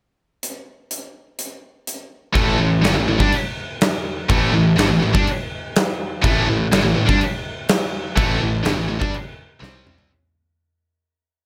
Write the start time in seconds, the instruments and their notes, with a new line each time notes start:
0.43 closed hi-hat
0.91 closed hi-hat
1.39 closed hi-hat
1.87 closed hi-hat
2.34 picked electric bass A1, distorted electric guitar A2 E3 A3, kick, crash
2.59 picked electric bass A1, distorted electric guitar A2 E3
2.84 picked electric bass G1, distorted electric guitar G2 D3, snare, crash
2.95 picked electric bass A1, distorted electric guitar A2 E3
3.08 picked electric bass A1, distorted electric guitar A2 E3
3.20 picked electric bass G2, distorted electric guitar G3 D4, kick
3.32 crash
3.81 snare, crash
4.29 picked electric bass A1, distorted electric guitar A2 E3 A3, kick, crash
4.52 picked electric bass A1, distorted electric guitar A2 E3
4.76 picked electric bass G1, distorted electric guitar G2 D3, snare, crash
4.89 picked electric bass A1, distorted electric guitar A2 E3
5.02 picked electric bass A1, distorted electric guitar A2 E3
5.13 picked electric bass G2, distorted electric guitar G3 D4, kick
5.27 crash
5.76 snare, crash
6.22 picked electric bass A1, distorted electric guitar A2 E3 A3, kick, crash
6.48 picked electric bass A1, distorted electric guitar A2 E3
6.72 picked electric bass G1, distorted electric guitar G2 D3, snare, crash
6.83 picked electric bass A1, distorted electric guitar A2 E3
6.94 picked electric bass A1, distorted electric guitar A2 E3
7.07 picked electric bass G2, distorted electric guitar G3 D4, kick
7.21 crash
7.69 snare, crash
8.16 picked electric bass A1, distorted electric guitar A2 E3 A3, kick, crash
8.40 picked electric bass A1, distorted electric guitar A2 E3
8.64 picked electric bass G1, distorted electric guitar G2 D3, snare, crash
8.76 picked electric bass A1, distorted electric guitar A2 E3
8.88 picked electric bass A1, distorted electric guitar A2 E3
8.99 picked electric bass G2, distorted electric guitar G3 D4, kick
9.14 crash
9.60 picked electric bass C2, distorted electric guitar C3 G3 C4, snare
9.87 mid tom
9.98 floor tom